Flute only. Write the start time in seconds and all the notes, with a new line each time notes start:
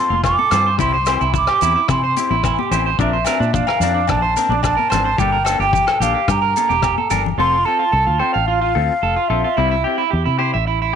Already playing: C6
0.25 D6
0.81 C6
1.37 D6
1.91 C6
3.02 E5
3.55 F5
4.10 A5
4.64 A5
5.20 G5
5.61 G5
6.03 F5
6.31 A#5
7.40 C6
7.65 A5
8.20 G5
8.46 F5
9.28 E5